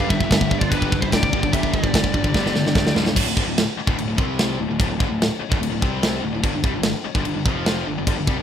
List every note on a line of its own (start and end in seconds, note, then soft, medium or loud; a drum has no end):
0.00 0.10 G3 loud
0.07 0.29 G1 medium
0.07 0.28 G2 medium
0.07 0.21 D3 medium
0.07 0.29 G3 loud
0.07 0.57 G4 medium
0.07 0.59 E5 loud
0.07 kick loud
0.12 0.21 G2 medium
0.20 0.31 G2 medium
0.20 0.31 D3 medium
0.20 kick medium
0.28 0.69 G1 medium
0.28 0.49 G2 medium
0.28 0.51 G3 medium
0.28 kick loud
0.28 crash medium
0.32 0.49 G2 medium
0.32 0.50 D3 loud
0.32 snare loud
0.41 kick medium
0.51 0.62 G2 medium
0.51 0.62 D3 loud
0.51 0.70 G3 loud
0.51 kick medium
0.59 0.72 D3 loud
0.59 0.70 F4 medium
0.59 0.70 D5 medium
0.59 kick loud
0.63 0.71 G2 medium
0.69 0.90 G1 loud
0.69 0.91 G2 medium
0.69 0.98 D4 medium
0.69 1.02 B4 loud
0.69 kick loud
0.69 crash medium
0.73 0.91 D3 loud
0.73 0.91 G3 loud
0.82 kick medium
0.91 1.11 G1 loud
0.91 1.02 G2 medium
0.91 1.01 D3 medium
0.91 1.12 G3 loud
0.91 kick loud
1.01 1.12 G2 medium
1.01 1.12 D3 medium
1.01 1.10 E4 medium
1.01 1.12 C5 medium
1.01 kick medium
1.10 1.31 C2 medium
1.10 1.31 G2 medium
1.10 1.31 D3 medium
1.10 1.32 G3 medium
1.10 1.51 G4 medium
1.10 1.54 D5 medium
1.10 kick medium
1.10 snare loud
1.10 crash medium
1.23 kick medium
1.33 1.52 G1 medium
1.33 1.42 G2 loud
1.33 1.42 D3 loud
1.33 1.42 G3 loud
1.33 kick medium
1.43 1.51 G2 medium
1.43 1.52 D3 loud
1.43 kick medium
1.52 1.72 G1 medium
1.52 1.72 G2 loud
1.52 1.72 D3 loud
1.52 1.72 G3 loud
1.52 1.71 G4 medium
1.52 1.74 E5 loud
1.52 kick loud
1.52 crash medium
1.63 kick medium
1.72 1.92 G1 medium
1.72 1.82 G2 medium
1.72 1.82 D3 medium
1.72 1.94 G3 loud
1.72 2.92 G4 medium
1.72 2.91 D5 loud
1.72 kick medium
1.83 1.92 G2 medium
1.83 1.93 D3 medium
1.83 kick medium
1.94 2.13 G1 medium
1.94 2.12 G2 medium
1.94 2.13 D3 medium
1.94 2.14 G3 medium
1.94 kick loud
1.94 snare loud
1.94 crash medium
2.04 kick medium
2.14 2.33 G1 medium
2.14 2.23 G2 medium
2.14 2.23 D3 medium
2.14 2.35 G3 loud
2.14 kick medium
2.24 2.33 G2 medium
2.24 2.34 D3 medium
2.24 kick medium
2.34 2.53 G1 medium
2.34 2.53 G2 loud
2.34 2.53 D3 medium
2.34 2.54 G3 medium
2.34 kick medium
2.34 snare medium
2.46 snare medium
2.53 2.73 G1 medium
2.53 2.65 G2 medium
2.53 2.64 D3 medium
2.53 2.75 G3 loud
2.53 snare medium
2.65 2.75 G2 medium
2.65 2.75 D3 medium
2.65 snare medium
2.75 2.94 D2 loud
2.75 2.93 G2 medium
2.75 2.94 D3 medium
2.75 2.95 G3 loud
2.75 kick loud
2.75 snare medium
2.87 snare medium
2.95 3.14 C#2 medium
2.95 3.04 G2 loud
2.95 3.04 D3 loud
2.95 3.05 G3 loud
2.95 snare loud
3.06 3.15 G2 medium
3.06 3.16 D3 loud
3.06 snare loud
3.16 3.24 D1 loud
3.16 3.26 D2 loud
3.16 3.26 A2 loud
3.16 kick loud
3.16 crash loud
3.16 crash medium
3.25 3.35 D1 medium
3.25 3.36 D2 medium
3.25 3.37 A2 medium
3.36 3.45 G1 medium
3.36 3.46 G2 medium
3.36 3.47 D3 medium
3.36 kick loud
3.45 3.65 D1 medium
3.45 3.63 D2 medium
3.45 3.64 A2 medium
3.58 snare loud
3.58 crash medium
3.77 muted picked electric bass stroke soft
3.77 muted distorted electric guitar stroke medium
3.87 3.97 D1 loud
3.87 3.96 D2 medium
3.87 3.97 A2 loud
3.87 kick loud
3.98 4.07 D1 medium
3.98 4.06 D2 medium
3.98 4.07 A2 medium
3.98 crash medium
4.08 4.18 D1 medium
4.08 4.17 D2 medium
4.08 4.17 A2 medium
4.17 4.56 C2 medium
4.17 4.58 C3 loud
4.17 4.58 G3 medium
4.17 4.58 C4 loud
4.17 kick loud
4.39 snare loud
4.39 crash medium
4.59 4.68 D1 medium
4.59 4.67 D2 medium
4.59 4.67 A2 medium
4.68 4.79 D1 medium
4.68 4.78 D2 medium
4.68 4.78 A2 medium
4.79 4.89 D1 loud
4.79 4.87 D2 loud
4.79 4.88 A2 loud
4.79 kick loud
4.79 crash medium
4.88 4.99 D1 medium
4.88 4.98 D2 medium
4.88 4.99 A2 medium
4.98 5.09 G1 medium
4.98 5.09 G2 loud
4.98 5.09 D3 loud
4.98 kick loud
5.09 5.29 D1 medium
5.09 5.26 D2 medium
5.09 5.26 A2 medium
5.22 snare loud
5.22 crash medium
5.40 muted distorted electric guitar stroke medium
5.40 muted picked electric bass stroke soft
5.49 5.59 D1 loud
5.49 5.58 D2 medium
5.49 5.59 A2 medium
5.49 kick loud
5.60 5.69 D1 medium
5.60 5.69 D2 medium
5.60 5.69 A2 medium
5.60 crash medium
5.70 5.80 D1 medium
5.70 5.81 D2 medium
5.70 5.81 A2 medium
5.81 6.20 C2 loud
5.81 6.21 C3 loud
5.81 6.21 G3 medium
5.81 6.22 C4 loud
5.81 kick loud
6.03 snare loud
6.03 crash medium
6.22 6.32 D1 medium
6.22 6.31 D2 medium
6.22 6.32 A2 medium
6.33 6.43 D1 medium
6.33 6.42 D2 medium
6.33 6.43 A2 medium
6.43 6.52 G1 loud
6.43 6.53 G2 loud
6.43 6.53 D3 loud
6.43 kick loud
6.43 crash medium
6.53 6.63 G1 medium
6.53 6.63 G2 medium
6.53 6.64 D3 medium
6.63 6.73 C2 loud
6.63 6.73 C3 medium
6.63 6.74 G3 loud
6.63 kick loud
6.74 6.93 G1 medium
6.74 6.90 G2 medium
6.74 6.91 D3 medium
6.83 snare loud
6.83 crash medium
7.05 muted distorted electric guitar stroke medium
7.05 muted picked electric bass stroke soft
7.15 7.24 G1 loud
7.15 7.24 G2 loud
7.15 7.25 D3 loud
7.15 kick loud
7.25 7.35 G1 medium
7.25 7.35 G2 medium
7.25 7.36 D3 medium
7.25 crash medium
7.36 7.44 G1 medium
7.36 7.45 G2 medium
7.36 7.46 D3 medium
7.45 7.83 F1 loud
7.45 7.86 F2 medium
7.45 7.86 C3 loud
7.45 7.86 F3 loud
7.45 kick loud
7.66 snare loud
7.66 crash medium
7.87 7.97 G1 medium
7.87 7.97 G2 medium
7.87 7.97 D3 medium
7.98 8.06 G1 medium
7.98 8.06 G2 medium
7.98 8.07 D3 medium
8.06 8.16 G1 loud
8.06 8.17 G2 loud
8.06 8.17 D3 loud
8.06 kick loud
8.06 crash medium
8.18 8.27 G1 medium
8.18 8.28 G2 medium
8.18 8.28 D3 medium
8.27 8.37 C2 medium
8.27 8.37 C3 medium
8.27 8.38 G3 medium
8.27 kick loud
8.38 8.42 G1 medium
8.38 8.42 G2 medium
8.38 8.42 D3 medium